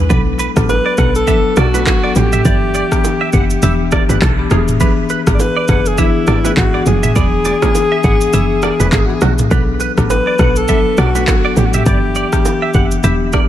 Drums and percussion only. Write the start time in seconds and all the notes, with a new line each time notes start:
0.10 kick, low conga, shaker
0.39 shaker
0.57 kick, cross-stick, shaker
0.69 high bongo, shaker
0.98 kick, cross-stick, shaker
1.15 shaker
1.27 kick, low conga, shaker
1.56 cross-stick, high bongo, shaker
1.74 low bongo, shaker
1.86 kick, clap, high bongo, shaker
2.15 low bongo, low conga, shaker
2.33 mid tom, shaker
2.45 kick, low conga, shaker
2.74 shaker
2.92 kick, cross-stick, shaker
3.04 high bongo, shaker
3.33 kick, shaker
3.50 shaker
3.62 low conga, shaker
3.92 kick, cross-stick, high bongo, shaker
4.09 low bongo, shaker
4.22 kick, cross-stick, clap, high bongo, shaker
4.51 cross-stick, low bongo, low conga, shaker
4.68 mid tom, shaker
4.80 kick, low conga, shaker
5.09 shaker
5.27 kick, cross-stick, shaker
5.40 high bongo, shaker
5.68 kick, cross-stick, shaker
5.86 shaker
5.98 kick, low conga, shaker
6.27 cross-stick, high bongo, shaker
6.44 low bongo, shaker
6.57 kick, clap, high bongo, shaker
6.86 low bongo, low conga, shaker
7.03 mid tom, shaker
7.16 kick, low conga, shaker
7.45 low bongo, shaker
7.62 kick, cross-stick, low bongo, shaker
7.75 high bongo, shaker
8.03 kick, shaker
8.21 shaker
8.33 low conga, shaker
8.62 cross-stick, high bongo, shaker
8.80 low bongo, shaker
8.92 kick, cross-stick, clap, high bongo, shaker
9.21 cross-stick, low bongo, low conga, shaker
9.39 mid tom, high bongo, shaker
9.51 kick, low conga, shaker
9.80 shaker
9.98 kick, cross-stick, shaker
10.10 high bongo, shaker
10.39 kick, cross-stick, shaker
10.56 shaker
10.68 kick, low conga, shaker
10.97 cross-stick, high bongo, shaker
11.15 low bongo, shaker
11.28 kick, clap, high bongo, shaker
11.56 low bongo, low conga, shaker
11.74 mid tom, shaker
11.86 kick, low conga, shaker
12.15 shaker
12.33 kick, cross-stick, shaker
12.45 high bongo, shaker
12.74 kick, shaker
12.91 shaker
13.04 low conga, shaker
13.33 kick, cross-stick, high bongo, shaker